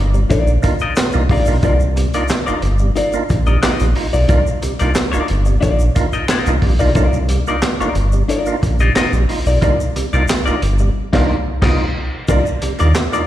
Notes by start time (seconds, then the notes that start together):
Already playing: G1
0.14 C3 G3, muted clean electric guitar stroke, shaker
0.30 A#1 D#4 F4 A#4 D5, kick, closed hi-hat, shaker
0.47 shaker
0.62 A#3 D4 D#4 F4, muted clean electric guitar stroke, kick, closed hi-hat, shaker
0.79 D#4 F4 A#4 D#5, shaker
0.96 snare, clap, closed hi-hat, shaker
1.12 C2 A#3 D4 D#4 F4, muted clean electric guitar stroke, shaker
1.29 A#1 C3 G3 D#4 F4 A#4 D5, kick, open hi-hat
1.46 B1 A#3 D4 D#4 F4, muted clean electric guitar stroke, shaker
1.62 C2 A#3 D4 D#4 F4 A#4 D5, kick, closed hi-hat, shaker
1.80 shaker
1.96 C3 G3, muted clean electric guitar stroke, closed hi-hat, shaker
2.13 A#3 D4 D#4 F4 A#4 D5, closed hi-hat, shaker
2.28 muted clean electric guitar stroke, snare, clap, closed hi-hat, shaker
2.46 G1 A#3 D4 D#4 F4 A#4 D5, shaker
2.61 G1, muted clean electric guitar stroke, closed hi-hat
2.79 C3 G3, muted clean electric guitar stroke, shaker
2.96 D#4 F4 A#4 D5, closed hi-hat, shaker
3.13 A#3 D4 D#4 F4, shaker
3.29 A#1, muted clean electric guitar stroke, kick, closed hi-hat, shaker
3.46 C3 G3 D#4 F4 A#4 D#5, shaker
3.62 A#1 D#4 F4 A#4 D#5, snare, clap, closed hi-hat, shaker
3.80 A#1 C3 G3, closed hi-hat, shaker
3.95 D#4 F4, muted clean electric guitar stroke, open hi-hat
4.13 B1 D#4 F4 A#4 D5, shaker
4.28 C2 A#3 D4 D#4 F4 A#4 D5, kick, closed hi-hat, shaker
4.47 shaker
4.62 C3 G3, muted clean electric guitar stroke, closed hi-hat, shaker
4.79 C2 A#3 D4 D#4 F4 A#4 D5, closed hi-hat, shaker
4.95 muted clean electric guitar stroke, snare, clap, closed hi-hat, shaker
5.12 G1 A#3 D4 D#4 F4 A#4 D5, shaker
5.28 G1, muted clean electric guitar stroke, closed hi-hat
5.45 C3 G3, muted clean electric guitar stroke, shaker
5.61 A#1 D#4 F4 A#4 D5, kick, closed hi-hat, shaker
5.79 shaker
5.95 A#3 D4 D#4 F4, muted clean electric guitar stroke, kick, closed hi-hat, shaker
6.13 D#4 F4 A#4 D#5, shaker
6.28 D#4 F4 A#4 D#5, snare, clap, closed hi-hat, shaker
6.46 C2 A#3 D4 D#4 F4, closed hi-hat, shaker
6.62 A#1 C3 G3, muted clean electric guitar stroke, kick, open hi-hat
6.79 B1 A#3 D4 D#4 F4 A#4 D5, shaker
6.95 C2 A#3 D4 D#4 F4 A#4 D5, kick, closed hi-hat, shaker
7.13 shaker
7.29 C3 G3, muted clean electric guitar stroke, closed hi-hat, shaker
7.47 A#3 D4 D#4 F4 A#4 D5, shaker
7.62 snare, clap, closed hi-hat, shaker
7.80 G1 A#3 D4 D#4 F4 A#4 D5, shaker
7.95 G1, closed hi-hat
8.12 C3 G3, muted clean electric guitar stroke, shaker
8.28 D#4 F4 A#4 D5, closed hi-hat, shaker
8.46 A#3 D4 D#4 F4, shaker
8.62 A#1, muted clean electric guitar stroke, kick, closed hi-hat, shaker
8.79 C3 G3 D#4 F4 A#4 D#5, shaker
8.95 A#1 D#4 F4 A#4 D#5, snare, clap, closed hi-hat, shaker
9.13 A#1 C3 G3, shaker
9.29 D#4 F4, muted clean electric guitar stroke, open hi-hat
9.46 B1 D#4 F4 A#4 D5, shaker
9.61 C2 A#3 D4 D#4 F4 A#4 D5, kick, closed hi-hat, shaker
9.80 shaker
9.96 C3 G3, muted clean electric guitar stroke, closed hi-hat, shaker
10.13 C2 A#3 D4 D#4 F4 A#4 D5, shaker
10.28 snare, clap, closed hi-hat, shaker
10.46 G1 A#3 D4 D#4 F4 A#4 D5, shaker
10.62 G1, muted clean electric guitar stroke, closed hi-hat
10.78 C3 G3, muted clean electric guitar stroke, shaker
11.13 C2 A#3 D4 D#4 F4 A#4 D5, kick, snare, crash
11.61 C2 D#4 F4 A#4 D#5, kick, snare, crash
12.28 C2 A#3 D4 D#4 F4 A#4 D5, kick, closed hi-hat, shaker
12.46 shaker
12.62 C3 G3, muted clean electric guitar stroke, closed hi-hat
12.79 D#2 A#3 D4 D#4 F4 A#4 D5, closed hi-hat, shaker
12.95 muted clean electric guitar stroke, snare, clap, closed hi-hat, shaker
13.12 A#3 D4 D#4 F4 A#4 D5, shaker